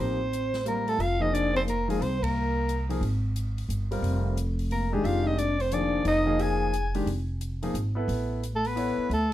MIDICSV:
0, 0, Header, 1, 7, 480
1, 0, Start_track
1, 0, Tempo, 337838
1, 1418, Time_signature, 3, 2, 24, 8
1, 13262, End_track
2, 0, Start_track
2, 0, Title_t, "Soprano saxophone"
2, 0, Program_c, 0, 64
2, 6, Note_on_c, 0, 72, 79
2, 952, Note_off_c, 0, 72, 0
2, 966, Note_on_c, 0, 70, 75
2, 1261, Note_on_c, 0, 69, 77
2, 1283, Note_off_c, 0, 70, 0
2, 1433, Note_on_c, 0, 77, 92
2, 1455, Note_off_c, 0, 69, 0
2, 1730, Note_on_c, 0, 75, 83
2, 1751, Note_off_c, 0, 77, 0
2, 1909, Note_on_c, 0, 74, 81
2, 1931, Note_off_c, 0, 75, 0
2, 2209, Note_off_c, 0, 74, 0
2, 2221, Note_on_c, 0, 72, 72
2, 2295, Note_off_c, 0, 72, 0
2, 2408, Note_on_c, 0, 70, 76
2, 2678, Note_off_c, 0, 70, 0
2, 2703, Note_on_c, 0, 68, 78
2, 2872, Note_on_c, 0, 72, 78
2, 2893, Note_off_c, 0, 68, 0
2, 3170, Note_on_c, 0, 70, 74
2, 3191, Note_off_c, 0, 72, 0
2, 4124, Note_off_c, 0, 70, 0
2, 6704, Note_on_c, 0, 70, 66
2, 7007, Note_on_c, 0, 68, 75
2, 7028, Note_off_c, 0, 70, 0
2, 7186, Note_on_c, 0, 77, 86
2, 7207, Note_off_c, 0, 68, 0
2, 7490, Note_on_c, 0, 75, 80
2, 7511, Note_off_c, 0, 77, 0
2, 7660, Note_on_c, 0, 74, 77
2, 7682, Note_off_c, 0, 75, 0
2, 7969, Note_on_c, 0, 72, 76
2, 7990, Note_off_c, 0, 74, 0
2, 8152, Note_on_c, 0, 74, 87
2, 8173, Note_off_c, 0, 72, 0
2, 8619, Note_off_c, 0, 74, 0
2, 8631, Note_on_c, 0, 75, 91
2, 9113, Note_on_c, 0, 80, 91
2, 9135, Note_off_c, 0, 75, 0
2, 9888, Note_off_c, 0, 80, 0
2, 12157, Note_on_c, 0, 69, 68
2, 12317, Note_on_c, 0, 71, 78
2, 12338, Note_off_c, 0, 69, 0
2, 12956, Note_off_c, 0, 71, 0
2, 12977, Note_on_c, 0, 69, 70
2, 13262, Note_off_c, 0, 69, 0
2, 13262, End_track
3, 0, Start_track
3, 0, Title_t, "Grand piano"
3, 0, Program_c, 1, 0
3, 0, Note_on_c, 1, 53, 41
3, 0, Note_on_c, 1, 58, 41
3, 0, Note_on_c, 1, 63, 38
3, 0, Note_on_c, 1, 67, 47
3, 249, Note_off_c, 1, 53, 0
3, 249, Note_off_c, 1, 63, 0
3, 251, Note_off_c, 1, 58, 0
3, 257, Note_off_c, 1, 67, 0
3, 931, Note_on_c, 1, 55, 49
3, 938, Note_on_c, 1, 72, 55
3, 940, Note_on_c, 1, 60, 45
3, 942, Note_on_c, 1, 65, 41
3, 1414, Note_off_c, 1, 55, 0
3, 1418, Note_off_c, 1, 72, 0
3, 1419, Note_off_c, 1, 60, 0
3, 1420, Note_off_c, 1, 65, 0
3, 1706, Note_on_c, 1, 53, 60
3, 1708, Note_on_c, 1, 58, 54
3, 1715, Note_on_c, 1, 63, 52
3, 1719, Note_on_c, 1, 68, 64
3, 2333, Note_off_c, 1, 53, 0
3, 2334, Note_off_c, 1, 58, 0
3, 2338, Note_off_c, 1, 63, 0
3, 2340, Note_off_c, 1, 68, 0
3, 2672, Note_on_c, 1, 53, 65
3, 2672, Note_on_c, 1, 58, 57
3, 2678, Note_on_c, 1, 63, 53
3, 2683, Note_on_c, 1, 65, 68
3, 2833, Note_off_c, 1, 53, 0
3, 2833, Note_off_c, 1, 58, 0
3, 2836, Note_off_c, 1, 63, 0
3, 2839, Note_off_c, 1, 65, 0
3, 4110, Note_on_c, 1, 53, 60
3, 4122, Note_on_c, 1, 63, 55
3, 4123, Note_on_c, 1, 58, 54
3, 4129, Note_on_c, 1, 68, 63
3, 4271, Note_off_c, 1, 53, 0
3, 4277, Note_off_c, 1, 58, 0
3, 4277, Note_off_c, 1, 63, 0
3, 4280, Note_off_c, 1, 68, 0
3, 5555, Note_on_c, 1, 55, 61
3, 5561, Note_on_c, 1, 60, 54
3, 5564, Note_on_c, 1, 65, 53
3, 5566, Note_on_c, 1, 70, 63
3, 6174, Note_off_c, 1, 55, 0
3, 6177, Note_off_c, 1, 60, 0
3, 6178, Note_off_c, 1, 65, 0
3, 6179, Note_off_c, 1, 70, 0
3, 6991, Note_on_c, 1, 51, 63
3, 6994, Note_on_c, 1, 56, 60
3, 7004, Note_on_c, 1, 62, 60
3, 7007, Note_on_c, 1, 67, 71
3, 7611, Note_off_c, 1, 51, 0
3, 7613, Note_off_c, 1, 56, 0
3, 7617, Note_off_c, 1, 62, 0
3, 7619, Note_off_c, 1, 67, 0
3, 8132, Note_on_c, 1, 51, 52
3, 8132, Note_on_c, 1, 53, 60
3, 8136, Note_on_c, 1, 58, 50
3, 8147, Note_on_c, 1, 68, 60
3, 8855, Note_off_c, 1, 51, 0
3, 8855, Note_off_c, 1, 53, 0
3, 8857, Note_off_c, 1, 58, 0
3, 8862, Note_off_c, 1, 68, 0
3, 8893, Note_on_c, 1, 53, 70
3, 8895, Note_on_c, 1, 58, 61
3, 8899, Note_on_c, 1, 63, 62
3, 8905, Note_on_c, 1, 68, 81
3, 9523, Note_off_c, 1, 53, 0
3, 9523, Note_off_c, 1, 58, 0
3, 9526, Note_off_c, 1, 63, 0
3, 9528, Note_off_c, 1, 68, 0
3, 9869, Note_on_c, 1, 51, 63
3, 9871, Note_on_c, 1, 56, 64
3, 9876, Note_on_c, 1, 62, 54
3, 9883, Note_on_c, 1, 67, 68
3, 10028, Note_off_c, 1, 51, 0
3, 10029, Note_off_c, 1, 56, 0
3, 10032, Note_off_c, 1, 62, 0
3, 10035, Note_off_c, 1, 67, 0
3, 10833, Note_on_c, 1, 53, 61
3, 10840, Note_on_c, 1, 63, 59
3, 10841, Note_on_c, 1, 58, 57
3, 10848, Note_on_c, 1, 68, 69
3, 10991, Note_off_c, 1, 53, 0
3, 10995, Note_off_c, 1, 58, 0
3, 10995, Note_off_c, 1, 63, 0
3, 10999, Note_off_c, 1, 68, 0
3, 11298, Note_on_c, 1, 59, 62
3, 11308, Note_on_c, 1, 64, 60
3, 11315, Note_on_c, 1, 69, 61
3, 11320, Note_on_c, 1, 71, 68
3, 11929, Note_off_c, 1, 59, 0
3, 11934, Note_off_c, 1, 64, 0
3, 11938, Note_off_c, 1, 69, 0
3, 11940, Note_off_c, 1, 71, 0
3, 12445, Note_on_c, 1, 59, 63
3, 12449, Note_on_c, 1, 64, 53
3, 12461, Note_on_c, 1, 73, 61
3, 12463, Note_on_c, 1, 69, 56
3, 12933, Note_off_c, 1, 59, 0
3, 12935, Note_off_c, 1, 64, 0
3, 12941, Note_off_c, 1, 73, 0
3, 12942, Note_off_c, 1, 69, 0
3, 13262, End_track
4, 0, Start_track
4, 0, Title_t, "Trombone"
4, 0, Program_c, 2, 57
4, 1, Note_on_c, 2, 60, 71
4, 921, Note_off_c, 2, 60, 0
4, 929, Note_on_c, 2, 58, 61
4, 1249, Note_on_c, 2, 57, 67
4, 1270, Note_off_c, 2, 58, 0
4, 1416, Note_on_c, 2, 65, 79
4, 1438, Note_off_c, 2, 57, 0
4, 1718, Note_on_c, 2, 63, 74
4, 1740, Note_off_c, 2, 65, 0
4, 1872, Note_on_c, 2, 62, 69
4, 1893, Note_off_c, 2, 63, 0
4, 2180, Note_off_c, 2, 62, 0
4, 2189, Note_on_c, 2, 60, 68
4, 2270, Note_off_c, 2, 60, 0
4, 2360, Note_on_c, 2, 58, 73
4, 2652, Note_off_c, 2, 58, 0
4, 2688, Note_on_c, 2, 56, 65
4, 2849, Note_on_c, 2, 60, 75
4, 2871, Note_off_c, 2, 56, 0
4, 3151, Note_on_c, 2, 58, 72
4, 3173, Note_off_c, 2, 60, 0
4, 4115, Note_off_c, 2, 58, 0
4, 6691, Note_on_c, 2, 58, 64
4, 6999, Note_on_c, 2, 56, 66
4, 7020, Note_off_c, 2, 58, 0
4, 7179, Note_on_c, 2, 65, 75
4, 7200, Note_off_c, 2, 56, 0
4, 7459, Note_on_c, 2, 63, 69
4, 7481, Note_off_c, 2, 65, 0
4, 7629, Note_on_c, 2, 62, 66
4, 7651, Note_off_c, 2, 63, 0
4, 7967, Note_on_c, 2, 60, 65
4, 7988, Note_off_c, 2, 62, 0
4, 8147, Note_on_c, 2, 62, 72
4, 8168, Note_off_c, 2, 60, 0
4, 8592, Note_off_c, 2, 62, 0
4, 8601, Note_on_c, 2, 63, 87
4, 9099, Note_on_c, 2, 68, 75
4, 9120, Note_off_c, 2, 63, 0
4, 9880, Note_off_c, 2, 68, 0
4, 12142, Note_on_c, 2, 57, 59
4, 12306, Note_on_c, 2, 59, 73
4, 12328, Note_off_c, 2, 57, 0
4, 12933, Note_off_c, 2, 59, 0
4, 12941, Note_on_c, 2, 57, 70
4, 13262, Note_off_c, 2, 57, 0
4, 13262, End_track
5, 0, Start_track
5, 0, Title_t, "Upright bass"
5, 0, Program_c, 3, 32
5, 0, Note_on_c, 3, 33, 64
5, 1359, Note_off_c, 3, 33, 0
5, 1402, Note_on_c, 3, 29, 71
5, 2792, Note_off_c, 3, 29, 0
5, 2837, Note_on_c, 3, 36, 77
5, 4227, Note_off_c, 3, 36, 0
5, 4274, Note_on_c, 3, 32, 77
5, 5185, Note_off_c, 3, 32, 0
5, 5238, Note_on_c, 3, 31, 66
5, 5689, Note_off_c, 3, 31, 0
5, 5716, Note_on_c, 3, 29, 78
5, 7104, Note_off_c, 3, 29, 0
5, 7156, Note_on_c, 3, 29, 76
5, 8545, Note_off_c, 3, 29, 0
5, 8596, Note_on_c, 3, 29, 76
5, 9986, Note_off_c, 3, 29, 0
5, 10034, Note_on_c, 3, 29, 75
5, 10947, Note_off_c, 3, 29, 0
5, 10998, Note_on_c, 3, 32, 69
5, 11452, Note_off_c, 3, 32, 0
5, 11478, Note_on_c, 3, 33, 80
5, 12700, Note_off_c, 3, 33, 0
5, 12922, Note_on_c, 3, 38, 73
5, 13262, Note_off_c, 3, 38, 0
5, 13262, End_track
6, 0, Start_track
6, 0, Title_t, "Muted upright bass strokes"
6, 12753, Note_on_c, 9, 29, 37
6, 12895, Note_off_c, 9, 29, 0
6, 13262, End_track
7, 0, Start_track
7, 0, Title_t, "Drums"
7, 472, Note_on_c, 9, 42, 45
7, 614, Note_off_c, 9, 42, 0
7, 765, Note_on_c, 9, 38, 36
7, 766, Note_on_c, 9, 46, 28
7, 907, Note_off_c, 9, 38, 0
7, 908, Note_off_c, 9, 46, 0
7, 937, Note_on_c, 9, 42, 39
7, 1079, Note_off_c, 9, 42, 0
7, 1245, Note_on_c, 9, 46, 29
7, 1387, Note_off_c, 9, 46, 0
7, 1421, Note_on_c, 9, 46, 37
7, 1563, Note_off_c, 9, 46, 0
7, 1914, Note_on_c, 9, 42, 50
7, 2056, Note_off_c, 9, 42, 0
7, 2219, Note_on_c, 9, 46, 33
7, 2361, Note_off_c, 9, 46, 0
7, 2386, Note_on_c, 9, 42, 47
7, 2528, Note_off_c, 9, 42, 0
7, 2699, Note_on_c, 9, 46, 35
7, 2841, Note_off_c, 9, 46, 0
7, 2869, Note_on_c, 9, 46, 40
7, 3011, Note_off_c, 9, 46, 0
7, 3169, Note_on_c, 9, 36, 77
7, 3177, Note_on_c, 9, 51, 75
7, 3311, Note_off_c, 9, 36, 0
7, 3320, Note_off_c, 9, 51, 0
7, 3821, Note_on_c, 9, 42, 48
7, 3963, Note_off_c, 9, 42, 0
7, 4124, Note_on_c, 9, 46, 34
7, 4267, Note_off_c, 9, 46, 0
7, 4301, Note_on_c, 9, 46, 39
7, 4443, Note_off_c, 9, 46, 0
7, 4772, Note_on_c, 9, 42, 54
7, 4914, Note_off_c, 9, 42, 0
7, 5087, Note_on_c, 9, 46, 35
7, 5229, Note_off_c, 9, 46, 0
7, 5258, Note_on_c, 9, 42, 49
7, 5400, Note_off_c, 9, 42, 0
7, 5563, Note_on_c, 9, 46, 37
7, 5705, Note_off_c, 9, 46, 0
7, 5739, Note_on_c, 9, 46, 42
7, 5881, Note_off_c, 9, 46, 0
7, 6214, Note_on_c, 9, 42, 52
7, 6356, Note_off_c, 9, 42, 0
7, 6520, Note_on_c, 9, 46, 37
7, 6663, Note_off_c, 9, 46, 0
7, 6691, Note_on_c, 9, 46, 40
7, 6833, Note_off_c, 9, 46, 0
7, 7175, Note_on_c, 9, 46, 40
7, 7317, Note_off_c, 9, 46, 0
7, 7651, Note_on_c, 9, 42, 51
7, 7793, Note_off_c, 9, 42, 0
7, 7956, Note_on_c, 9, 46, 36
7, 8098, Note_off_c, 9, 46, 0
7, 8120, Note_on_c, 9, 42, 49
7, 8262, Note_off_c, 9, 42, 0
7, 8596, Note_on_c, 9, 46, 43
7, 8738, Note_off_c, 9, 46, 0
7, 9084, Note_on_c, 9, 46, 45
7, 9226, Note_off_c, 9, 46, 0
7, 9569, Note_on_c, 9, 42, 48
7, 9711, Note_off_c, 9, 42, 0
7, 9869, Note_on_c, 9, 46, 36
7, 10011, Note_off_c, 9, 46, 0
7, 10048, Note_on_c, 9, 46, 43
7, 10190, Note_off_c, 9, 46, 0
7, 10528, Note_on_c, 9, 42, 51
7, 10670, Note_off_c, 9, 42, 0
7, 10836, Note_on_c, 9, 46, 38
7, 10978, Note_off_c, 9, 46, 0
7, 11009, Note_on_c, 9, 42, 53
7, 11151, Note_off_c, 9, 42, 0
7, 11493, Note_on_c, 9, 46, 43
7, 11635, Note_off_c, 9, 46, 0
7, 11983, Note_on_c, 9, 42, 56
7, 12125, Note_off_c, 9, 42, 0
7, 12285, Note_on_c, 9, 46, 33
7, 12427, Note_off_c, 9, 46, 0
7, 12461, Note_on_c, 9, 46, 44
7, 12603, Note_off_c, 9, 46, 0
7, 12944, Note_on_c, 9, 46, 35
7, 13086, Note_off_c, 9, 46, 0
7, 13262, End_track
0, 0, End_of_file